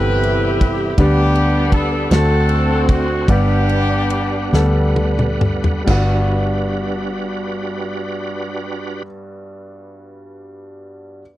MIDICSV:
0, 0, Header, 1, 6, 480
1, 0, Start_track
1, 0, Key_signature, 1, "major"
1, 0, Tempo, 751880
1, 625, Time_signature, 6, 3, 24, 8
1, 1592, Tempo, 803213
1, 2552, Tempo, 860832
1, 3032, Tempo, 913242
1, 3512, Tempo, 944882
1, 6305, End_track
2, 0, Start_track
2, 0, Title_t, "Horn section"
2, 0, Program_c, 0, 61
2, 0, Note_on_c, 0, 64, 81
2, 0, Note_on_c, 0, 67, 80
2, 0, Note_on_c, 0, 71, 108
2, 457, Note_off_c, 0, 71, 0
2, 608, Note_off_c, 0, 67, 0
2, 609, Note_off_c, 0, 64, 0
2, 635, Note_on_c, 0, 59, 75
2, 635, Note_on_c, 0, 62, 70
2, 636, Note_on_c, 0, 67, 107
2, 1084, Note_off_c, 0, 67, 0
2, 1111, Note_on_c, 0, 69, 97
2, 1326, Note_off_c, 0, 59, 0
2, 1326, Note_off_c, 0, 62, 0
2, 1333, Note_off_c, 0, 69, 0
2, 1351, Note_on_c, 0, 69, 98
2, 1353, Note_on_c, 0, 60, 80
2, 1354, Note_on_c, 0, 66, 74
2, 1804, Note_off_c, 0, 69, 0
2, 1826, Note_off_c, 0, 66, 0
2, 1833, Note_on_c, 0, 66, 90
2, 2042, Note_off_c, 0, 60, 0
2, 2064, Note_on_c, 0, 67, 97
2, 2067, Note_off_c, 0, 66, 0
2, 2067, Note_on_c, 0, 59, 66
2, 2068, Note_on_c, 0, 62, 65
2, 3012, Note_off_c, 0, 59, 0
2, 3012, Note_off_c, 0, 62, 0
2, 3033, Note_off_c, 0, 67, 0
2, 6305, End_track
3, 0, Start_track
3, 0, Title_t, "Grand piano"
3, 0, Program_c, 1, 0
3, 0, Control_c, 1, 64, 127
3, 0, Note_on_c, 1, 48, 64
3, 0, Note_on_c, 1, 55, 76
3, 0, Note_on_c, 1, 59, 68
3, 0, Note_on_c, 1, 60, 56
3, 0, Note_on_c, 1, 64, 62
3, 0, Note_on_c, 1, 67, 54
3, 0, Note_on_c, 1, 69, 68
3, 0, Note_on_c, 1, 71, 77
3, 424, Note_off_c, 1, 59, 0
3, 425, Note_off_c, 1, 60, 0
3, 427, Note_off_c, 1, 64, 0
3, 428, Note_off_c, 1, 67, 0
3, 429, Note_off_c, 1, 69, 0
3, 623, Note_off_c, 1, 55, 0
3, 623, Note_on_c, 1, 55, 79
3, 627, Note_on_c, 1, 59, 68
3, 629, Note_on_c, 1, 50, 69
3, 631, Note_on_c, 1, 67, 80
3, 632, Note_on_c, 1, 62, 79
3, 634, Control_c, 1, 64, 0
3, 637, Note_off_c, 1, 48, 0
3, 637, Note_off_c, 1, 71, 0
3, 637, Note_on_c, 1, 71, 87
3, 739, Control_c, 1, 64, 127
3, 1138, Note_off_c, 1, 55, 0
3, 1140, Note_off_c, 1, 59, 0
3, 1142, Note_off_c, 1, 67, 0
3, 1143, Note_off_c, 1, 62, 0
3, 1145, Note_off_c, 1, 71, 0
3, 1323, Note_off_c, 1, 50, 0
3, 1348, Note_on_c, 1, 57, 57
3, 1349, Note_on_c, 1, 50, 58
3, 1350, Note_on_c, 1, 60, 57
3, 1350, Note_on_c, 1, 62, 58
3, 1354, Note_on_c, 1, 66, 62
3, 1356, Control_c, 1, 64, 0
3, 1357, Note_on_c, 1, 69, 68
3, 1479, Control_c, 1, 64, 127
3, 1860, Note_off_c, 1, 57, 0
3, 1861, Note_off_c, 1, 60, 0
3, 1861, Note_off_c, 1, 62, 0
3, 1863, Note_off_c, 1, 66, 0
3, 1864, Note_off_c, 1, 69, 0
3, 2040, Note_off_c, 1, 50, 0
3, 2066, Note_on_c, 1, 55, 87
3, 2066, Note_on_c, 1, 59, 76
3, 2069, Note_on_c, 1, 62, 65
3, 2070, Control_c, 1, 64, 0
3, 2070, Note_on_c, 1, 43, 67
3, 2072, Note_on_c, 1, 78, 70
3, 2075, Note_on_c, 1, 67, 84
3, 2159, Control_c, 1, 64, 127
3, 2588, Note_off_c, 1, 55, 0
3, 2588, Note_off_c, 1, 59, 0
3, 2589, Note_off_c, 1, 62, 0
3, 2591, Note_off_c, 1, 78, 0
3, 2592, Note_off_c, 1, 67, 0
3, 2770, Note_off_c, 1, 43, 0
3, 2793, Note_on_c, 1, 55, 75
3, 2793, Note_on_c, 1, 59, 62
3, 2796, Note_on_c, 1, 62, 66
3, 2797, Note_on_c, 1, 78, 62
3, 2799, Note_on_c, 1, 69, 83
3, 3305, Note_off_c, 1, 55, 0
3, 3305, Note_off_c, 1, 59, 0
3, 3307, Note_off_c, 1, 62, 0
3, 3307, Note_off_c, 1, 78, 0
3, 3308, Note_off_c, 1, 69, 0
3, 3496, Note_on_c, 1, 55, 74
3, 3505, Note_on_c, 1, 59, 68
3, 3510, Note_on_c, 1, 43, 84
3, 3516, Note_on_c, 1, 62, 69
3, 3519, Control_c, 1, 64, 0
3, 3526, Note_on_c, 1, 66, 88
3, 3623, Control_c, 1, 64, 127
3, 5101, Note_off_c, 1, 55, 0
3, 5110, Note_off_c, 1, 59, 0
3, 5115, Note_off_c, 1, 43, 0
3, 5121, Note_off_c, 1, 62, 0
3, 5131, Note_off_c, 1, 66, 0
3, 6227, Control_c, 1, 64, 0
3, 6305, End_track
4, 0, Start_track
4, 0, Title_t, "Tonewheel organ"
4, 0, Program_c, 2, 16
4, 0, Note_on_c, 2, 48, 54
4, 0, Note_on_c, 2, 52, 63
4, 0, Note_on_c, 2, 55, 51
4, 0, Note_on_c, 2, 67, 70
4, 0, Note_on_c, 2, 71, 59
4, 600, Note_off_c, 2, 55, 0
4, 601, Note_off_c, 2, 52, 0
4, 601, Note_off_c, 2, 67, 0
4, 602, Note_off_c, 2, 71, 0
4, 603, Note_off_c, 2, 48, 0
4, 625, Note_on_c, 2, 59, 59
4, 627, Note_on_c, 2, 62, 54
4, 628, Note_on_c, 2, 67, 66
4, 1338, Note_off_c, 2, 62, 0
4, 1342, Note_on_c, 2, 60, 69
4, 1345, Note_on_c, 2, 62, 63
4, 1345, Note_on_c, 2, 66, 68
4, 1346, Note_on_c, 2, 57, 78
4, 1346, Note_on_c, 2, 72, 78
4, 1347, Note_off_c, 2, 59, 0
4, 1348, Note_off_c, 2, 67, 0
4, 2048, Note_off_c, 2, 62, 0
4, 2055, Note_on_c, 2, 62, 54
4, 2056, Note_on_c, 2, 55, 66
4, 2056, Note_on_c, 2, 69, 56
4, 2060, Note_on_c, 2, 59, 56
4, 2061, Note_off_c, 2, 60, 0
4, 2061, Note_on_c, 2, 78, 64
4, 2062, Note_off_c, 2, 57, 0
4, 2062, Note_off_c, 2, 66, 0
4, 2062, Note_off_c, 2, 72, 0
4, 2097, Note_on_c, 2, 71, 68
4, 2101, Note_off_c, 2, 69, 0
4, 3488, Note_off_c, 2, 55, 0
4, 3488, Note_off_c, 2, 62, 0
4, 3490, Note_off_c, 2, 59, 0
4, 3491, Note_off_c, 2, 78, 0
4, 3505, Note_off_c, 2, 71, 0
4, 3506, Note_on_c, 2, 62, 68
4, 3506, Note_on_c, 2, 66, 71
4, 3507, Note_on_c, 2, 55, 73
4, 3511, Note_on_c, 2, 71, 74
4, 5111, Note_off_c, 2, 62, 0
4, 5111, Note_off_c, 2, 66, 0
4, 5112, Note_off_c, 2, 55, 0
4, 5116, Note_off_c, 2, 71, 0
4, 6305, End_track
5, 0, Start_track
5, 0, Title_t, "Fingered electric bass"
5, 0, Program_c, 3, 33
5, 0, Note_on_c, 3, 31, 89
5, 599, Note_off_c, 3, 31, 0
5, 627, Note_on_c, 3, 38, 92
5, 1322, Note_off_c, 3, 38, 0
5, 1348, Note_on_c, 3, 38, 109
5, 2039, Note_off_c, 3, 38, 0
5, 2063, Note_on_c, 3, 31, 107
5, 2767, Note_off_c, 3, 31, 0
5, 2790, Note_on_c, 3, 38, 95
5, 3492, Note_off_c, 3, 38, 0
5, 3511, Note_on_c, 3, 31, 95
5, 5116, Note_off_c, 3, 31, 0
5, 6305, End_track
6, 0, Start_track
6, 0, Title_t, "Drums"
6, 150, Note_on_c, 9, 51, 42
6, 214, Note_off_c, 9, 51, 0
6, 389, Note_on_c, 9, 51, 47
6, 390, Note_on_c, 9, 36, 98
6, 453, Note_off_c, 9, 51, 0
6, 454, Note_off_c, 9, 36, 0
6, 625, Note_on_c, 9, 36, 105
6, 625, Note_on_c, 9, 51, 67
6, 689, Note_off_c, 9, 36, 0
6, 689, Note_off_c, 9, 51, 0
6, 865, Note_on_c, 9, 51, 40
6, 929, Note_off_c, 9, 51, 0
6, 1099, Note_on_c, 9, 36, 92
6, 1101, Note_on_c, 9, 51, 42
6, 1163, Note_off_c, 9, 36, 0
6, 1165, Note_off_c, 9, 51, 0
6, 1348, Note_on_c, 9, 51, 56
6, 1355, Note_on_c, 9, 38, 99
6, 1412, Note_off_c, 9, 51, 0
6, 1419, Note_off_c, 9, 38, 0
6, 1589, Note_on_c, 9, 51, 41
6, 1649, Note_off_c, 9, 51, 0
6, 1827, Note_on_c, 9, 51, 48
6, 1828, Note_on_c, 9, 36, 91
6, 1887, Note_off_c, 9, 51, 0
6, 1888, Note_off_c, 9, 36, 0
6, 2064, Note_on_c, 9, 36, 106
6, 2065, Note_on_c, 9, 51, 59
6, 2123, Note_off_c, 9, 36, 0
6, 2124, Note_off_c, 9, 51, 0
6, 2309, Note_on_c, 9, 51, 42
6, 2369, Note_off_c, 9, 51, 0
6, 2553, Note_on_c, 9, 51, 44
6, 2609, Note_off_c, 9, 51, 0
6, 2795, Note_on_c, 9, 38, 59
6, 2851, Note_off_c, 9, 38, 0
6, 3033, Note_on_c, 9, 48, 74
6, 3085, Note_off_c, 9, 48, 0
6, 3151, Note_on_c, 9, 47, 68
6, 3204, Note_off_c, 9, 47, 0
6, 3269, Note_on_c, 9, 45, 100
6, 3321, Note_off_c, 9, 45, 0
6, 3389, Note_on_c, 9, 43, 91
6, 3441, Note_off_c, 9, 43, 0
6, 3512, Note_on_c, 9, 49, 82
6, 3513, Note_on_c, 9, 36, 89
6, 3563, Note_off_c, 9, 36, 0
6, 3563, Note_off_c, 9, 49, 0
6, 6305, End_track
0, 0, End_of_file